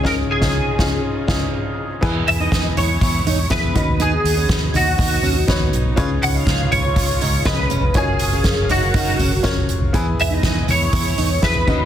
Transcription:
Already playing: C#3 C#4 D#4 F4 G#4
0.04 C#2 C#3 C#4 D#4 F4 G#4 A#4, kick, snare, crash
0.31 G#4
0.40 C#2 C#4 D#4 F4 G#4, kick, snare
0.78 C#2 C#4 D#4 F4 G#4, kick, snare
1.27 C#2 C#4 D#4 F4 G#4, kick, snare, crash
2.01 E2 E3 G#3 B3 E4 G#4 B4 G#5, kick, crash
2.27 E2 E5, hi-hat pedal, open hi-hat
2.40 D#4 D#5
2.52 E2, kick, snare, hi-hat pedal, open hi-hat
2.76 E2 E4 C#5, floor tom, hi-hat pedal, open hi-hat
3.01 E2 E4, kick, hi-hat pedal, open hi-hat
3.25 E2 D#4, hi-hat pedal, open hi-hat
3.50 E2 B3 E4 G#4 B4 E5, kick, snare, hi-hat pedal, open hi-hat
3.63 floor tom
3.74 D#2 D#3 F#3 B3 C#4 D#4 F#4 B4 D#5, kick, hi-hat pedal, open hi-hat
3.88 floor tom
4.00 D#4 G#4, hi-hat pedal, open hi-hat
4.24 D#2, hi-hat pedal, open hi-hat
4.37 C#4
4.49 D#2, kick, snare, hi-hat pedal, open hi-hat
4.74 D#2 D#4 F#4, floor tom, hi-hat pedal, open hi-hat
4.98 D#2 D#4, kick, hi-hat pedal, open hi-hat
5.23 D#2 C#4, hi-hat pedal, open hi-hat
5.47 D#2 B3 D#4 F#4 B4 C#5, kick, snare, hi-hat pedal, open hi-hat
5.60 floor tom
5.73 B1, hi-hat pedal, open hi-hat
5.85 floor tom
5.96 C#2 C#3 G#3 C#4 F4 G#4 B4 C#5, kick, hi-hat pedal, open hi-hat
6.22 C#2 F#5, hi-hat pedal, open hi-hat
6.34 D#4 F5
6.47 C#2, kick, snare, hi-hat pedal, open hi-hat
6.72 C#2 F4 C#5, floor tom, hi-hat pedal, open hi-hat
6.96 C#2 F4, kick, hi-hat pedal, open hi-hat
7.21 C#2 D#4, hi-hat pedal, open hi-hat
7.45 C#2 C#4 F4 G#4 B4 D#5, kick, snare, hi-hat pedal, open hi-hat
7.58 floor tom
7.70 F1 C#4, hi-hat pedal, open hi-hat
7.82 floor tom
7.94 F#1 F#3 C#4 D#4 F4 F#4 G#4 A#4 C#5 F5, kick, hi-hat pedal, open hi-hat
8.19 F#1, hi-hat pedal, open hi-hat
8.33 C#4
8.44 F#1, kick, snare, hi-hat pedal, open hi-hat
8.69 F#1 D#4 F#4, floor tom, hi-hat pedal, open hi-hat
8.94 F#1 D#4, kick, hi-hat pedal, open hi-hat
9.19 F#1 C#4, floor tom, hi-hat pedal, open hi-hat
9.43 F#1 C#4 F4 F#4 A#4 C#5, kick, snare, hi-hat pedal, open hi-hat
9.57 floor tom
9.69 F1, hi-hat pedal, open hi-hat
9.81 floor tom
9.93 E2 E3 G#3 B3 E4 G#4 B4 G#5, kick, hi-hat pedal, open hi-hat
10.18 E2 E5, hi-hat pedal, open hi-hat
10.31 D#4 D#5
10.43 E2, kick, snare, hi-hat pedal, open hi-hat
10.68 E2 E4 C#5, floor tom, hi-hat pedal, open hi-hat
10.93 E2 E4, kick, hi-hat pedal, open hi-hat
11.18 E2 D#4, hi-hat pedal, open hi-hat
11.42 E2 B3 E4 G#4 B4 E5, kick, snare, hi-hat pedal, open hi-hat
11.55 floor tom
11.67 D#2 D#3 F#3 B3 C#4 D#4 F#4 B4 D#5, kick, crash
11.80 floor tom

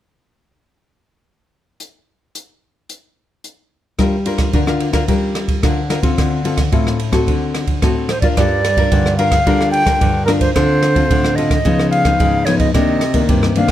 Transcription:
1.80 closed hi-hat
2.35 closed hi-hat
2.89 closed hi-hat
3.44 closed hi-hat
3.98 G3 D4 F4 A#4, kick, cross-stick, ride
4.26 D4 F4 A#4, ride
4.38 kick, cross-stick, ride
4.53 D3 D4 F4 A#4, kick, ride
4.67 D4 F4 A#4, cross-stick
4.80 ride
4.93 D4 F4 A#4, kick, cross-stick, ride
5.08 G3 D4 F4 A#4, kick, ride
5.35 cross-stick, ride
5.48 kick, ride
5.63 D3 D4 F4 A#4, kick, cross-stick, ride
5.90 D4 F4 A#4, cross-stick, ride
6.02 C4 F4 A4, kick, ride
6.17 D3, kick, cross-stick, ride
6.44 C4 F4 A4, ride
6.57 kick, cross-stick, ride
6.72 A2 C4 F4 A4, kick, ride
6.87 cross-stick
6.99 ride
7.12 C4 F#4 A4, kick, cross-stick, ride
7.27 D3, kick, ride
7.54 cross-stick, ride
7.67 kick, ride
7.82 A2 C4 F#4 A4, kick, cross-stick, ride
8.09 C5, cross-stick, ride
8.21 D4 F4 A#4 D5, kick, ride
8.37 G2 G3 D5, kick, cross-stick, ride
8.65 cross-stick, ride
8.77 D4 F4 A#4, kick, ride
8.92 G2 D3, kick, ride
9.06 cross-stick
9.17 D4 F4 A#4 F5, ride
9.32 kick, cross-stick, ride
9.46 D3 G3 D4 F4 A#4, kick, ride
9.61 cross-stick
9.71 G5, ride
9.86 D4 F4 A#4, kick, cross-stick, ride
10.01 G2 D3, kick, ride
10.25 D4 F4 A#4, cross-stick, ride
10.40 C5, kick, ride
10.54 D3 C4 F4 A4 C5, kick, cross-stick, ride
10.83 cross-stick, ride
10.95 C4 F4 A4, kick, ride
11.10 A2 D3, kick, ride
11.25 cross-stick
11.36 C4 F4 A4 D#5, ride
11.50 kick, cross-stick, ride
11.65 C#3 F3 B3 D#4, kick, ride
11.79 cross-stick
11.90 F5, ride
12.05 F3 B3 D#4, kick, cross-stick, ride
12.20 G#2 C#3, kick, ride
12.45 F3 B3 D#4 C#5, cross-stick, ride
12.59 D#5, kick, ride
12.74 C3 D#3 A#3 D4 D#5, kick, cross-stick, ride
13.01 cross-stick, ride
13.14 D#3 A#3 D4, kick, ride
13.29 G2 C3, kick, ride
13.43 cross-stick
13.56 D#3 A#3 D4 F5, ride
13.68 cross-stick, ride

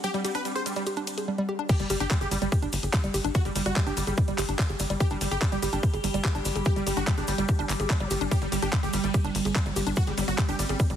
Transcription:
Already playing: G3 C4 D4 G4 F#5
0.04 G3 G4, closed hi-hat, shaker
0.14 G3, closed hi-hat, shaker
0.25 G3 G4, closed hi-hat, shaker
0.34 D4 B4, closed hi-hat, shaker
0.45 G3, closed hi-hat, shaker
0.56 G#4 C5, closed hi-hat, shaker
0.66 G3, closed hi-hat, shaker
0.76 G3, closed hi-hat, shaker
0.86 G4, closed hi-hat, shaker
0.96 D4, closed hi-hat, shaker
1.07 closed hi-hat, shaker
1.18 G#4, closed hi-hat, shaker
1.28 G3
1.38 G3
1.49 G4
1.59 D4
1.69 G3 G4, kick, closed hi-hat, crash, shaker
1.80 G1 G3, closed hi-hat, shaker
1.90 G1 G3 G4, open hi-hat, shaker
2.00 G1 D4 G4, closed hi-hat, shaker
2.10 G3, kick, clap, closed hi-hat, shaker
2.21 G1 G4 G#4, closed hi-hat, shaker
2.31 G1 G3, open hi-hat, shaker
2.42 G1 G3, closed hi-hat, shaker
2.52 G4, kick, closed hi-hat, shaker
2.62 G1 D4, closed hi-hat, shaker
2.73 G1, open hi-hat, shaker
2.83 G1 G#4, closed hi-hat, shaker
2.93 G3, kick, clap, closed hi-hat, shaker
3.04 G1 G3, closed hi-hat, shaker
3.14 G1 G4, open hi-hat, shaker
3.25 G1 D4, closed hi-hat, shaker
3.35 F#4, kick, closed hi-hat, shaker
3.45 G1 G3 G#4, closed hi-hat, shaker
3.56 G1 G3, open hi-hat, shaker
3.66 G1 G3 F#4, closed hi-hat, shaker
3.76 G3 G4, kick, clap, closed hi-hat, shaker
3.87 G1 D4 G4, closed hi-hat, shaker
3.97 G1 G3, open hi-hat, shaker
4.07 G1 G3 G#4, closed hi-hat, shaker
4.17 G3, kick, closed hi-hat, shaker
4.28 G1 G3, closed hi-hat, shaker
4.38 G1 G4, clap, open hi-hat, shaker
4.48 G1 D4, closed hi-hat, shaker
4.59 kick, clap, closed hi-hat, shaker
4.69 G1 G#4, closed hi-hat, shaker
4.79 G1 G3, open hi-hat, shaker
4.89 G1 G3, closed hi-hat, shaker
5.00 G4, kick, closed hi-hat, shaker
5.10 G1 G3 D4, closed hi-hat, shaker
5.21 G1 G3, open hi-hat, shaker
5.31 G1 G4 G#4, closed hi-hat, shaker
5.42 G3, kick, clap, closed hi-hat, shaker
5.52 G1 G3 G4, closed hi-hat, shaker
5.62 G1 G3 G4, open hi-hat, shaker
5.73 G1 G3 D4, closed hi-hat, shaker
5.83 kick, closed hi-hat, shaker
5.93 G1 G#4, closed hi-hat, shaker
6.04 G1 G3, open hi-hat, shaker
6.14 G1 G3, closed hi-hat, shaker
6.25 G4, kick, clap, closed hi-hat, shaker
6.35 G1 D4, closed hi-hat, shaker
6.45 G1, open hi-hat, shaker
6.56 G1 G#4, closed hi-hat, shaker
6.65 G3 G4, kick, closed hi-hat, shaker
6.76 G1 G3, closed hi-hat, shaker
6.86 G1 G3 G4, open hi-hat, shaker
6.97 G1 D4 F#4, closed hi-hat, shaker
7.07 G3, kick, clap, closed hi-hat, shaker
7.17 G1 D4 G#4, closed hi-hat, shaker
7.27 G1 G3, open hi-hat, shaker
7.38 G1 G3, closed hi-hat, shaker
7.48 G4, kick, closed hi-hat, shaker
7.59 G1 D4, closed hi-hat, shaker
7.69 G1, clap, open hi-hat, shaker
7.80 G1 G#4, closed hi-hat, shaker
7.89 G3, kick, clap, closed hi-hat, shaker
8.00 G1 G3, closed hi-hat, shaker
8.11 G1 G4, open hi-hat, shaker
8.21 G1 D4, closed hi-hat, shaker
8.31 G3 C4 G4, kick, closed hi-hat, shaker
8.42 G1 G3, closed hi-hat, shaker
8.52 G1 G3 G4, open hi-hat, shaker
8.62 G1 D4 G4, closed hi-hat, shaker
8.73 G3, kick, clap, closed hi-hat, shaker
8.83 G1 G4 G#4, closed hi-hat, shaker
8.93 G1 G3, open hi-hat, shaker
9.04 G1 G3, closed hi-hat, shaker
9.14 G4, kick, closed hi-hat, shaker
9.24 G1 D4, closed hi-hat, shaker
9.35 G1, open hi-hat, shaker
9.45 G1 G#4, closed hi-hat, shaker
9.56 G3, kick, clap, closed hi-hat, shaker
9.66 G1 G3, closed hi-hat, shaker
9.76 G1 G4, open hi-hat, shaker
9.87 G1 D4, closed hi-hat, shaker
9.96 F#4, kick, closed hi-hat, shaker
10.07 G1 G3 G#4, closed hi-hat, shaker
10.18 G1 G3, open hi-hat, shaker
10.28 G1 G3 F#4, closed hi-hat, shaker
10.38 G3 G4, kick, clap, closed hi-hat, shaker
10.48 G1 D4 G4, closed hi-hat, shaker
10.59 G1 G3, open hi-hat, shaker
10.69 G1 G3 G#4, closed hi-hat, shaker
10.79 G3, kick, closed hi-hat, shaker
10.90 G1 G3, closed hi-hat, shaker

